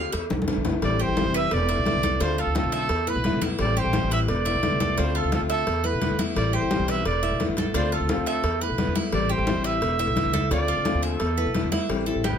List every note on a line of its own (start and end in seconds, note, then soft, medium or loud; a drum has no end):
0.00 0.12 D3 medium
0.00 0.12 A3 medium
0.00 0.13 C4 medium
0.00 0.13 F4 medium
0.00 0.12 F5 loud
0.12 0.30 E2 medium
0.12 0.23 E5 medium
0.12 muted steel-string acoustic guitar stroke medium
0.12 cowbell loud
0.12 high conga soft
0.30 0.55 B1 medium
0.30 low bongo medium
0.30 high conga medium
0.42 high conga loud
0.47 0.64 D3 medium
0.47 0.65 A3 medium
0.47 0.65 B3 medium
0.47 0.64 E4 medium
0.47 cowbell medium
0.47 low bongo medium
0.57 0.81 A#1 medium
0.65 0.83 A3 medium
0.65 0.82 B3 medium
0.65 0.82 E4 medium
0.65 cowbell medium
0.65 low bongo medium
0.65 low conga medium
0.82 1.07 A1 loud
0.82 1.15 E3 medium
0.82 1.16 G3 medium
0.82 1.17 C4 medium
0.82 1.17 E4 medium
0.82 1.03 D5 loud
0.82 cowbell loud
0.82 high conga soft
1.00 1.33 G4 medium
1.00 1.37 C5 loud
1.00 high conga soft
1.08 1.24 A1 medium
1.17 1.51 E3 medium
1.17 1.51 G3 medium
1.17 1.51 C4 medium
1.17 1.51 E4 medium
1.17 cowbell medium
1.17 high conga loud
1.25 1.50 F1 medium
1.34 1.68 B4 medium
1.34 1.54 E5 loud
1.34 cowbell medium
1.34 high conga soft
1.51 1.76 E1 loud
1.51 2.22 D5 loud
1.51 muted steel-string acoustic guitar stroke medium
1.51 cowbell loud
1.51 high conga soft
1.69 1.85 A3 soft
1.69 1.86 B3 soft
1.69 1.86 E4 medium
1.69 2.02 E5 medium
1.69 cowbell medium
1.69 high conga soft
1.77 1.94 B1 medium
1.86 2.03 D3 medium
1.86 2.03 A3 medium
1.86 2.03 B3 medium
1.86 2.02 E4 medium
1.86 cowbell medium
1.86 high conga medium
1.95 2.19 C2 medium
2.03 2.20 A3 soft
2.03 2.21 B3 soft
2.03 2.20 E4 medium
2.03 2.20 A4 medium
2.03 cowbell medium
2.03 high conga medium
2.20 2.45 D2 loud
2.20 2.54 D3 medium
2.20 2.55 A3 medium
2.20 2.55 C4 medium
2.20 2.37 D4 medium
2.20 2.55 F4 medium
2.20 2.41 C5 loud
2.20 cowbell loud
2.20 high conga soft
2.38 2.72 F4 medium
2.38 2.56 A4 loud
2.38 high conga soft
2.46 2.63 D2 medium
2.55 2.88 D3 medium
2.55 2.89 A3 medium
2.55 2.90 C4 medium
2.55 2.90 F4 medium
2.55 2.73 A4 medium
2.55 cowbell medium
2.55 high conga medium
2.63 2.88 B1 medium
2.72 3.10 A4 loud
2.72 3.06 E5 medium
2.72 cowbell medium
2.72 high conga soft
2.89 3.14 E2 loud
2.89 muted steel-string acoustic guitar stroke medium
2.89 cowbell loud
2.89 high conga soft
3.07 3.24 A3 medium
3.07 3.24 B3 soft
3.07 3.24 E4 medium
3.07 3.41 B4 medium
3.07 3.43 B4 loud
3.07 high conga soft
3.15 3.32 B1 loud
3.24 3.41 D3 medium
3.24 3.42 A3 medium
3.24 3.42 B3 medium
3.24 3.41 E4 medium
3.24 cowbell medium
3.24 high conga medium
3.33 3.58 B1 medium
3.41 3.60 A3 soft
3.41 3.59 B3 medium
3.41 3.75 E4 medium
3.41 3.59 E4 medium
3.41 cowbell medium
3.41 high conga medium
3.59 3.84 A1 loud
3.59 3.93 E3 medium
3.59 3.94 G3 medium
3.59 3.94 C4 medium
3.59 3.94 E4 medium
3.59 3.79 D5 loud
3.59 cowbell loud
3.59 high conga soft
3.76 4.10 G4 medium
3.76 4.12 C5 loud
3.76 high conga soft
3.85 4.02 A1 loud
3.93 4.28 E3 medium
3.93 4.28 G3 medium
3.93 4.29 C4 medium
3.93 4.29 E4 medium
3.93 cowbell medium
3.93 high conga loud
4.03 4.27 A1 loud
4.11 4.45 B4 medium
4.11 4.20 E5 loud
4.11 cowbell medium
4.11 high conga soft
4.28 4.53 E1 loud
4.28 5.00 D5 loud
4.28 muted steel-string acoustic guitar stroke medium
4.28 cowbell loud
4.28 high conga soft
4.45 4.62 A3 soft
4.45 4.63 B3 medium
4.45 4.62 E4 medium
4.45 4.79 E5 medium
4.45 cowbell medium
4.45 high conga soft
4.55 4.71 B1 medium
4.63 4.80 D3 medium
4.63 4.80 A3 medium
4.63 4.80 B3 medium
4.63 4.79 E4 medium
4.63 cowbell medium
4.63 high conga medium
4.72 4.96 C2 medium
4.80 4.97 A3 soft
4.80 4.98 B3 soft
4.80 4.97 E4 medium
4.80 4.97 A4 medium
4.80 cowbell medium
4.80 high conga medium
4.98 5.23 D2 loud
4.98 5.31 D3 medium
4.98 5.32 A3 medium
4.98 5.32 C4 medium
4.98 5.14 D4 medium
4.98 5.32 F4 medium
4.98 5.18 C5 medium
4.98 cowbell loud
4.98 high conga soft
5.15 5.49 F4 medium
5.15 5.33 A4 medium
5.15 high conga soft
5.24 5.40 D2 loud
5.32 5.66 D3 medium
5.32 5.66 A3 medium
5.32 5.67 C4 medium
5.32 5.67 F4 medium
5.32 5.41 A4 medium
5.32 cowbell medium
5.32 high conga loud
5.41 5.65 D2 medium
5.50 5.87 A4 loud
5.50 5.83 E5 medium
5.50 cowbell medium
5.50 high conga soft
5.67 5.91 E2 loud
5.67 muted steel-string acoustic guitar stroke medium
5.67 cowbell loud
5.67 high conga soft
5.84 6.01 A3 soft
5.84 6.01 B3 soft
5.84 6.01 E4 medium
5.84 6.18 B4 medium
5.84 6.19 B4 loud
5.84 high conga soft
5.93 6.09 B1 medium
6.01 6.18 D3 medium
6.01 6.18 A3 medium
6.01 6.18 B3 medium
6.01 6.17 E4 medium
6.01 cowbell medium
6.01 high conga medium
6.10 6.35 E2 medium
6.18 6.35 A3 soft
6.18 6.35 B3 soft
6.18 6.35 E4 medium
6.18 6.52 E4 loud
6.18 cowbell medium
6.18 high conga medium
6.35 6.61 A1 loud
6.35 6.69 E3 medium
6.35 6.70 G3 medium
6.35 6.70 C4 medium
6.35 6.70 E4 medium
6.35 6.56 D5 loud
6.35 cowbell loud
6.35 high conga soft
6.53 6.87 G4 medium
6.53 6.91 C5 loud
6.53 high conga soft
6.62 6.78 A1 medium
6.70 7.04 E3 medium
6.70 7.05 G3 medium
6.70 7.05 C4 medium
6.70 7.05 E4 medium
6.70 cowbell medium
6.70 high conga loud
6.79 7.04 B1 medium
6.88 7.22 B4 medium
6.88 7.05 E5 loud
6.88 cowbell medium
7.05 7.30 E1 loud
7.05 7.45 D5 loud
7.05 muted steel-string acoustic guitar stroke medium
7.05 cowbell loud
7.05 high conga soft
7.22 7.39 A3 soft
7.22 7.40 B3 soft
7.22 7.39 E4 medium
7.22 7.56 E5 medium
7.22 cowbell medium
7.22 high conga soft
7.31 7.48 B1 medium
7.40 7.56 D3 medium
7.40 7.57 A3 medium
7.40 7.57 B3 medium
7.40 7.56 E4 medium
7.40 cowbell medium
7.40 high conga medium
7.48 7.73 A1 medium
7.57 7.74 A3 soft
7.57 7.74 B3 soft
7.57 7.74 E4 medium
7.57 7.74 A4 medium
7.57 cowbell medium
7.57 high conga medium
7.74 7.99 D2 loud
7.74 8.08 D3 medium
7.74 8.09 A3 medium
7.74 8.09 C4 medium
7.74 7.91 D4 medium
7.74 8.09 F4 medium
7.74 7.95 C5 medium
7.74 cowbell loud
7.92 8.26 F4 medium
7.92 8.09 A4 medium
7.92 high conga soft
8.00 8.16 D2 medium
8.09 8.43 D3 medium
8.09 8.43 A3 medium
8.09 8.44 C4 medium
8.09 8.44 F4 medium
8.09 8.26 A4 medium
8.09 cowbell medium
8.09 high conga loud
8.17 8.42 D2 medium
8.26 8.63 A4 loud
8.26 8.60 E5 medium
8.26 cowbell medium
8.26 high conga soft
8.43 8.68 E2 loud
8.43 muted steel-string acoustic guitar stroke medium
8.43 cowbell loud
8.43 high conga soft
8.61 8.78 A3 soft
8.61 8.78 B3 medium
8.61 8.78 E4 medium
8.61 8.95 B4 medium
8.61 8.96 B4 loud
8.61 high conga soft
8.70 8.86 B1 loud
8.78 8.95 D3 medium
8.78 8.95 A3 medium
8.78 8.95 B3 medium
8.78 8.95 E4 medium
8.78 cowbell medium
8.78 high conga medium
8.87 9.12 E2 medium
8.95 9.13 A3 soft
8.95 9.13 B3 soft
8.95 9.29 E4 medium
8.95 9.12 E4 medium
8.95 cowbell medium
8.95 high conga medium
9.12 9.37 A1 loud
9.12 9.46 E3 medium
9.12 9.46 G3 medium
9.12 9.47 C4 medium
9.12 9.48 E4 medium
9.12 9.33 D5 loud
9.12 cowbell loud
9.12 high conga soft
9.29 9.63 G4 medium
9.29 9.66 C5 loud
9.29 high conga soft
9.38 9.55 A1 loud
9.47 9.81 E3 medium
9.47 9.81 G3 medium
9.47 9.82 C4 medium
9.47 9.82 E4 medium
9.47 cowbell medium
9.47 high conga loud
9.56 9.80 A1 medium
9.64 9.98 B4 medium
9.64 10.51 E5 loud
9.64 cowbell medium
9.64 high conga soft
9.81 10.06 E1 loud
9.81 muted steel-string acoustic guitar stroke medium
9.81 cowbell loud
9.81 high conga soft
9.99 10.15 A3 soft
9.99 10.16 B3 soft
9.99 10.16 E4 medium
9.99 10.33 E5 medium
9.99 cowbell medium
9.99 high conga soft
10.07 10.24 B1 loud
10.16 10.33 D3 medium
10.16 10.33 A3 medium
10.16 10.34 B3 medium
10.16 10.33 E4 medium
10.16 cowbell medium
10.16 high conga medium
10.25 10.50 C#2 medium
10.34 10.50 A3 soft
10.34 10.51 B3 soft
10.34 10.50 E4 medium
10.34 10.51 A4 medium
10.34 cowbell medium
10.34 high conga medium
10.50 10.76 D2 loud
10.50 10.84 D3 medium
10.50 10.85 A3 medium
10.50 10.85 C4 medium
10.50 10.68 D4 medium
10.50 10.86 F4 medium
10.50 11.00 D5 loud
10.50 cowbell loud
10.50 high conga soft
10.68 11.02 F4 medium
10.68 high conga soft
10.77 10.93 D2 loud
10.85 11.19 D3 medium
10.85 11.19 A3 medium
10.85 11.20 C4 medium
10.85 11.20 F4 medium
10.85 cowbell medium
10.85 high conga loud
10.94 11.19 D#2 medium
11.02 11.69 A4 medium
11.02 11.37 E5 medium
11.02 cowbell medium
11.02 high conga soft
11.20 11.45 E2 loud
11.20 muted steel-string acoustic guitar stroke medium
11.20 cowbell loud
11.20 high conga soft
11.37 11.54 A3 soft
11.37 11.54 B3 soft
11.37 11.54 E4 medium
11.37 11.71 B4 medium
11.37 high conga soft
11.46 11.63 B1 medium
11.54 11.71 D3 medium
11.54 11.72 A3 medium
11.54 11.71 B3 medium
11.54 11.70 E4 medium
11.54 cowbell medium
11.54 high conga medium
11.63 11.88 E2 medium
11.71 11.89 A3 soft
11.71 11.89 B3 soft
11.71 11.88 E4 soft
11.71 11.89 E4 medium
11.71 cowbell medium
11.71 high conga medium
11.89 12.14 A1 medium
11.89 12.06 E3 medium
11.89 12.06 G3 medium
11.89 12.07 C4 medium
11.89 12.05 E4 medium
11.89 cowbell loud
11.89 high conga soft
12.06 12.24 G3 medium
12.06 12.24 C4 medium
12.06 12.23 E4 medium
12.06 12.23 A4 medium
12.06 high conga soft
12.15 12.34 A1 medium
12.24 12.38 E3 medium
12.24 12.38 G3 medium
12.24 12.38 C4 medium
12.24 12.38 E4 medium
12.24 12.38 G4 medium
12.24 cowbell medium
12.24 high conga medium
12.28 12.38 B4 medium
12.33 12.38 E2 loud